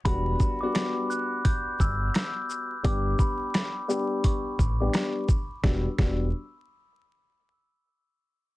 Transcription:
0.05 fingered electric bass E1, upright piano G3 B3 D4 F#4, glockenspiel B5, kick, closed hi-hat
0.40 kick, shaker
0.61 upright piano G3 B3 D4 F#4, glockenspiel D6
0.73 upright piano G3 B3 D4, glockenspiel D6, finger snap, cross-stick, snare, closed hi-hat
1.10 glockenspiel F#6, shaker
1.45 glockenspiel G6, kick, closed hi-hat
1.80 fingered electric bass G1, glockenspiel E6, kick, shaker
2.14 finger snap, cross-stick, snare, closed hi-hat
2.50 shaker
2.83 fingered electric bass G1, upright piano G3 B3 D4 G4, glockenspiel D6, kick, closed hi-hat
3.19 glockenspiel B5, kick, shaker
3.54 finger snap, cross-stick, snare, closed hi-hat
3.88 upright piano G3 B3 D4 G4, shaker
4.24 glockenspiel C#6, kick, closed hi-hat
4.59 fingered electric bass A1, kick, shaker
4.80 upright piano G3 B3 D4 G4, glockenspiel D6
4.94 finger snap, cross-stick, snare, closed hi-hat
5.29 kick, shaker
5.63 fingered electric bass E1, upright piano G3 B3 D4 F#4, glockenspiel E6, finger snap, kick, snare
5.98 fingered electric bass E1, upright piano G3 B3 D4 F#4, glockenspiel E6, finger snap, kick, snare

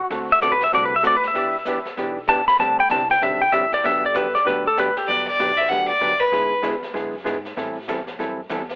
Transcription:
0.10 upright bass D2, hollow-body jazz guitar D3 A3 C4 F#4 A4, brush sweep, snare
0.32 electric slide guitar E5
0.41 upright bass B1, hollow-body jazz guitar D3 A3 C4 F#4 A4, electric slide guitar D5, snare, hi-hat pedal
0.52 electric slide guitar B4
0.60 electric slide guitar E5, snare
0.72 upright bass C2, hollow-body jazz guitar D3 A3 C4 F#4 A4, electric slide guitar D5, brush sweep, snare
0.85 electric slide guitar B4
0.96 electric slide guitar E5
1.03 upright bass D2, hollow-body jazz guitar D3 A3 C4 F#4 A4, snare, hi-hat pedal
1.07 electric slide guitar D5
1.17 electric slide guitar B4
1.23 snare
1.28 electric slide guitar E5
1.34 upright bass E2, hollow-body jazz guitar E3 B3 D4 G4, brush sweep, snare
1.65 hollow-body jazz guitar E3 B3 D4 G4, snare, hi-hat pedal
1.85 snare
1.97 upright bass B1, hollow-body jazz guitar E3 B3 D4 G4, brush sweep, snare
2.28 hollow-body jazz guitar E3 B3 D4 G4, electric slide guitar A5, snare, hi-hat pedal
2.48 electric slide guitar B5, snare
2.59 upright bass D2, hollow-body jazz guitar D3 G3 C4 D4 G4, electric slide guitar A5, brush sweep, snare
2.80 electric slide guitar G5
2.90 upright bass C2, hollow-body jazz guitar D3 G3 C4 D4 G4, electric slide guitar A5, snare, hi-hat pedal
3.10 electric slide guitar G5, snare
3.21 upright bass B1, hollow-body jazz guitar D3 G3 C4 D4 G4, electric slide guitar E5, brush sweep, snare
3.42 electric slide guitar G5
3.52 upright bass A1, hollow-body jazz guitar D3 G3 C4 D4 G4, electric slide guitar E5, snare, hi-hat pedal
3.72 electric slide guitar D5, snare
3.84 upright bass G1, hollow-body jazz guitar D3 F#3 B3 D4 G4, electric slide guitar E5, brush sweep, snare
4.06 electric slide guitar D5
4.14 hollow-body jazz guitar D3 F#3 B3 D4 G4, electric slide guitar B4, snare, hi-hat pedal
4.35 electric slide guitar D5, snare
4.45 upright bass D2, hollow-body jazz guitar D3 F#3 B3 D4 G4, electric slide guitar B4, brush sweep, snare
4.67 electric slide guitar A4
4.77 hollow-body jazz guitar D3 F#3 B3 D4 G4, electric slide guitar B4, snare, hi-hat pedal
4.97 electric slide guitar G4, snare
5.08 upright bass G1, hollow-body jazz guitar D3 F#3 B3 D4 G4, fiddle D5, brush sweep, kick, snare, crash
5.27 fiddle D5
5.39 upright bass B1, hollow-body jazz guitar D3 F#3 B3 D4 G4, snare, hi-hat pedal
5.57 fiddle E5, snare
5.68 upright bass D2, hollow-body jazz guitar D3 F#3 B3 D4 G4, fiddle F#5, brush sweep, snare
5.88 fiddle D5
6.01 upright bass F#2, hollow-body jazz guitar D3 F#3 B3 D4 G4, snare, hi-hat pedal
6.20 fiddle B4, snare
6.32 upright bass G#2, hollow-body jazz guitar D3 G#3 B3 E4 G#4, brush sweep, snare
6.62 upright bass E2, hollow-body jazz guitar D3 G#3 B3 E4 G#4, snare, hi-hat pedal
6.83 snare
6.94 upright bass F#2, hollow-body jazz guitar D3 G#3 B3 E4 G#4, brush sweep, snare
7.24 upright bass G#2, hollow-body jazz guitar D3 G#3 B3 E4 G#4, snare, hi-hat pedal
7.45 snare
7.57 upright bass A2, hollow-body jazz guitar E3 G3 C4 E4 A4, brush sweep, snare
7.88 upright bass E2, hollow-body jazz guitar E3 G3 C4 E4 A4, snare, hi-hat pedal
8.07 snare
8.19 upright bass F#2, hollow-body jazz guitar E3 G3 C4 E4 A4, brush sweep, snare
8.49 upright bass E2, hollow-body jazz guitar E3 G3 C4 E4 A4, snare, hi-hat pedal
8.69 snare

